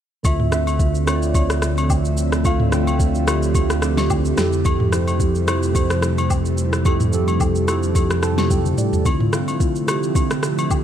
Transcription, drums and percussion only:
0.25 kick loud
0.25 high agogo medium
0.25 shaker medium
0.40 mid tom medium
0.52 cross-stick medium
0.52 shaker medium
0.67 high agogo medium
0.67 shaker soft
0.79 kick loud
0.79 shaker medium
0.95 shaker soft
1.07 cross-stick medium
1.07 high agogo medium
1.07 shaker medium
1.22 shaker medium
1.34 kick loud
1.34 high agogo medium
1.34 shaker medium
1.50 cross-stick medium
1.50 shaker medium
1.62 cross-stick medium
1.62 shaker medium
1.78 high agogo medium
1.78 shaker soft
1.90 kick medium
1.90 low woodblock medium
1.90 shaker medium
2.05 shaker medium
2.17 shaker medium
2.32 cross-stick medium
2.32 shaker medium
2.45 kick loud
2.45 high agogo medium
2.45 shaker medium
2.60 mid tom loud
2.72 cross-stick medium
2.72 shaker medium
2.87 high agogo medium
2.87 shaker medium
3.00 kick loud
3.00 shaker medium
3.15 shaker soft
3.28 cross-stick loud
3.28 high agogo medium
3.28 shaker medium
3.43 shaker medium
3.55 kick loud
3.55 high agogo medium
3.55 shaker medium
3.70 cross-stick medium
3.70 shaker medium
3.82 cross-stick medium
3.82 shaker medium
3.97 snare medium
3.97 high agogo medium
3.97 shaker soft
4.10 kick medium
4.10 low woodblock medium
4.10 shaker medium
4.25 shaker medium
4.37 cross-stick medium
4.37 snare medium
4.37 shaker medium
4.53 shaker medium
4.65 kick loud
4.65 high agogo medium
4.65 shaker medium
4.80 mid tom loud
4.92 cross-stick medium
4.92 shaker medium
5.08 high agogo medium
5.08 shaker soft
5.20 kick loud
5.20 shaker medium
5.35 shaker soft
5.48 cross-stick loud
5.48 high agogo medium
5.48 shaker medium
5.63 shaker medium
5.75 kick loud
5.75 high agogo medium
5.75 shaker medium
5.90 cross-stick medium
5.90 shaker medium
6.02 cross-stick medium
6.02 shaker medium
6.18 high agogo medium
6.18 shaker soft
6.30 kick medium
6.30 low woodblock medium
6.30 shaker medium
6.45 shaker medium
6.58 shaker medium
6.73 cross-stick medium
6.73 shaker medium
6.85 kick loud
6.85 high agogo medium
6.85 shaker medium
7.00 mid tom loud
7.00 shaker medium
7.13 shaker medium
7.28 high agogo medium
7.28 shaker medium
7.40 kick loud
7.40 low woodblock medium
7.40 shaker medium
7.55 shaker medium
7.68 cross-stick medium
7.68 high agogo medium
7.68 shaker medium
7.83 shaker medium
7.95 kick loud
7.95 high agogo medium
7.95 shaker medium
8.10 cross-stick medium
8.10 shaker medium
8.23 cross-stick medium
8.23 shaker medium
8.38 snare medium
8.38 high agogo medium
8.38 shaker soft
8.50 kick medium
8.50 high tom medium
8.50 shaker medium
8.66 mid tom medium
8.66 shaker soft
8.78 mid tom medium
8.78 shaker medium
8.93 floor tom medium
8.93 shaker medium
9.05 kick loud
9.05 high agogo medium
9.05 shaker medium
9.20 mid tom loud
9.33 cross-stick medium
9.33 shaker medium
9.48 high agogo medium
9.48 shaker soft
9.60 kick loud
9.60 shaker medium
9.76 shaker medium
9.88 cross-stick medium
9.88 high agogo medium
9.88 shaker medium
10.03 shaker medium
10.15 kick loud
10.15 high agogo medium
10.15 shaker medium
10.31 cross-stick medium
10.31 shaker medium
10.43 cross-stick medium
10.43 shaker medium
10.58 high agogo medium
10.58 shaker soft
10.70 kick medium
10.70 low woodblock medium
10.70 shaker medium

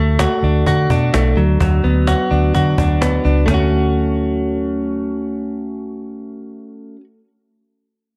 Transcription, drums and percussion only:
0.19 cajon slap medium
0.43 cajon slap soft
0.66 cajon bass medium
0.66 cajon slap soft
0.90 cajon bass medium
1.14 cajon slap loud
1.37 cajon slap soft
1.60 cajon bass medium
1.84 cajon slap soft
2.07 cajon slap medium
2.32 cajon slap soft
2.55 cajon bass medium
2.55 cajon slap soft
2.78 cajon bass medium
3.02 cajon slap medium
3.25 cajon slap soft
3.48 cajon bass medium
3.48 cajon slap medium

